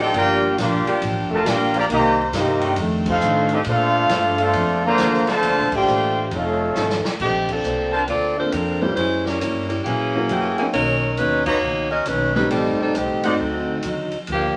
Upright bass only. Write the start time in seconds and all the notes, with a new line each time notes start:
Already playing: A1
0.13 G1
0.57 A#1
0.86 muted upright bass stroke
1.02 A1
1.16 G1
1.30 F1
1.45 A#1
1.90 C2
2.32 G2
2.77 F2
3.21 A2
3.66 A#2
4.09 G2
4.54 F2
4.98 D#2
5.27 muted upright bass stroke
5.42 D2
5.57 A#1
5.72 A1
5.87 A1
6.31 F1
6.75 G#1
7.20 A#1
7.63 C2
8.08 D2
8.53 F2
8.96 F#2
9.41 G2
9.85 A#2
10.28 F#2
10.58 muted upright bass stroke
10.73 B1
11.18 D#2
11.62 C#2
12.06 B1
12.50 A1
12.66 G1
12.80 D#1
12.95 C2
13.10 A1
13.25 G1
13.40 D2
13.83 D#2
14.12 muted upright bass stroke
14.28 D2